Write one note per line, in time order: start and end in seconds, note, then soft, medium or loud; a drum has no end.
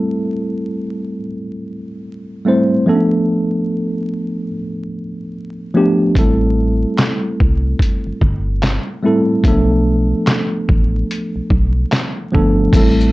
0.00 1.16 G3 medium
0.00 1.16 A3 medium
0.00 1.17 C4 medium
0.00 1.17 E4 medium
0.00 1.17 A4 medium
2.45 2.85 G3 medium
2.45 2.85 A3 medium
2.45 2.86 C4 medium
2.45 2.86 E4 medium
2.45 2.87 C5 medium
2.86 4.44 F3 medium
2.86 4.45 A3 medium
2.86 4.45 B3 medium
2.86 2.96 C#4 medium
2.86 4.46 A4 medium
2.95 4.49 D4 medium
5.74 6.14 F3 medium
5.74 6.14 A3 medium
5.74 6.14 B3 medium
5.74 6.15 D4 medium
5.74 6.15 G4 medium
6.15 6.86 A1 loud
6.15 7.73 G3 medium
6.15 7.74 A3 medium
6.15 7.74 C4 medium
6.15 7.75 E4 medium
6.15 7.75 A4 medium
6.15 kick medium
6.15 closed hi-hat medium
6.98 snare loud
6.98 clap medium
6.98 closed hi-hat medium
7.40 7.75 C2 medium
7.40 kick medium
7.79 kick medium
7.79 closed hi-hat medium
8.07 8.13 G1 soft
8.21 8.79 G1 loud
8.21 kick medium
8.63 snare loud
8.63 clap medium
8.63 closed hi-hat medium
9.03 9.42 G3 medium
9.03 9.43 A3 medium
9.03 9.43 C4 medium
9.03 9.44 E4 medium
9.03 9.44 A4 medium
9.44 10.14 B1 loud
9.44 11.02 F3 medium
9.44 11.03 A3 medium
9.44 11.03 B3 medium
9.44 11.03 D4 medium
9.44 kick medium
9.44 closed hi-hat medium
9.48 11.04 A4 medium
10.27 snare loud
10.27 clap medium
10.27 closed hi-hat medium
10.69 11.04 A1 medium
10.69 kick medium
11.11 closed hi-hat medium
11.36 11.42 B1 soft
11.50 11.85 B1 loud
11.50 kick medium
11.92 snare loud
11.92 clap medium
11.92 closed hi-hat medium
12.32 12.69 G1 medium
12.32 12.72 F3 medium
12.32 12.72 A3 medium
12.32 12.72 B3 medium
12.32 12.73 D4 medium
12.32 12.73 A4 medium
12.32 kick medium
12.73 13.12 A1 loud
12.73 13.12 G3 medium
12.73 13.12 A3 medium
12.73 13.12 C4 medium
12.73 13.12 E4 medium
12.73 13.12 A4 medium
12.73 kick loud
12.73 closed hi-hat medium
12.73 crash medium
12.73 shaker medium
13.00 shaker soft